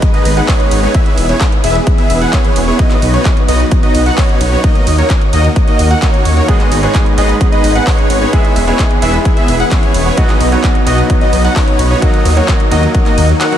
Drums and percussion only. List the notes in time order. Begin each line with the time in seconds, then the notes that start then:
0.02 kick, closed hi-hat
0.14 closed hi-hat
0.25 open hi-hat, ride
0.37 closed hi-hat
0.48 kick, clap, open hi-hat
0.60 closed hi-hat
0.71 open hi-hat, ride
0.94 kick, closed hi-hat
1.06 closed hi-hat
1.18 open hi-hat, ride
1.29 closed hi-hat
1.41 kick, clap, closed hi-hat
1.52 closed hi-hat
1.64 open hi-hat, ride
1.75 closed hi-hat
1.87 kick, closed hi-hat
1.98 closed hi-hat
2.10 open hi-hat, ride
2.22 closed hi-hat
2.33 kick, clap, closed hi-hat
2.45 closed hi-hat
2.56 open hi-hat, ride
2.79 kick, closed hi-hat
2.91 clap, closed hi-hat
3.02 open hi-hat, ride
3.14 closed hi-hat
3.25 kick, clap, closed hi-hat
3.37 closed hi-hat
3.48 open hi-hat, ride
3.60 closed hi-hat
3.71 kick, closed hi-hat
3.83 closed hi-hat
3.95 open hi-hat, ride
4.06 closed hi-hat
4.18 kick, clap, open hi-hat
4.29 closed hi-hat
4.41 open hi-hat, ride
4.64 kick, closed hi-hat
4.75 closed hi-hat
4.87 open hi-hat, ride
4.98 closed hi-hat
5.10 kick, clap, closed hi-hat
5.21 closed hi-hat
5.33 open hi-hat, ride
5.45 closed hi-hat
5.56 kick, closed hi-hat
5.68 closed hi-hat
5.79 open hi-hat, ride
5.91 closed hi-hat
6.02 kick, clap, closed hi-hat
6.14 closed hi-hat
6.25 open hi-hat, ride
6.37 closed hi-hat
6.48 kick, closed hi-hat
6.60 clap, closed hi-hat
6.72 open hi-hat, ride
6.83 closed hi-hat
6.95 kick, clap, closed hi-hat
7.06 closed hi-hat
7.18 open hi-hat, ride
7.29 closed hi-hat
7.41 kick, closed hi-hat
7.52 closed hi-hat
7.64 open hi-hat, ride
7.75 closed hi-hat
7.87 kick, clap, open hi-hat
7.99 closed hi-hat
8.10 open hi-hat, ride
8.33 kick, closed hi-hat
8.45 closed hi-hat
8.56 open hi-hat, ride
8.68 closed hi-hat
8.79 kick, clap, closed hi-hat
8.91 closed hi-hat
9.02 open hi-hat, ride
9.14 closed hi-hat
9.25 kick, closed hi-hat
9.37 closed hi-hat
9.48 open hi-hat, ride
9.60 closed hi-hat
9.71 kick, clap, closed hi-hat
9.83 closed hi-hat
9.94 open hi-hat, ride
10.17 kick, closed hi-hat
10.29 clap, closed hi-hat
10.40 open hi-hat, ride
10.52 closed hi-hat
10.64 kick, clap, closed hi-hat
10.75 closed hi-hat
10.87 open hi-hat, ride
10.98 closed hi-hat
11.10 kick, closed hi-hat
11.21 closed hi-hat
11.33 open hi-hat, ride
11.45 closed hi-hat
11.56 kick, clap, open hi-hat
11.68 closed hi-hat
11.79 open hi-hat, ride
12.02 kick, closed hi-hat
12.14 closed hi-hat
12.25 open hi-hat, ride
12.37 closed hi-hat
12.48 kick, clap, closed hi-hat
12.60 closed hi-hat
12.71 open hi-hat, ride
12.83 closed hi-hat
12.95 kick, closed hi-hat
13.06 clap, closed hi-hat
13.18 open hi-hat, ride
13.29 closed hi-hat
13.41 clap, closed hi-hat
13.52 closed hi-hat